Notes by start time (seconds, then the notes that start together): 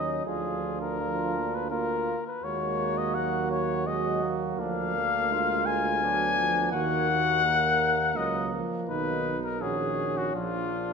Already playing: D#2 F#3 C#4 D#4 D#5
0.25 D2 F3 D4 F4 G#4
0.81 A#4
1.00 F3 F4
1.36 A#3
1.55 B4
1.70 A#3 F4 A#4
2.27 B4
2.42 D#2 G#3 A#3 F#4 C#5
2.98 D#5
3.15 F#3 F#5
3.51 C#5
3.87 F#3 G#3 F#4 D#5
4.23 A#3
4.57 D2 F3 D4 F5
4.96 A#3
5.31 G#3 F4
5.66 F4 G#5
6.01 F#3 B3 D4
6.38 F3
6.72 D#2 D#3 A#3 F#4 F#5
7.10 F#4
7.44 A#3 A#4
8.16 C#2 F#3 A#3 D#5
8.53 F3
8.88 B1 D#3 D#4 B4
9.44 A#4
9.60 A#1 D#3 C#4 F#4 G#4
10.18 F#4
10.35 A#1 F3 D4 F4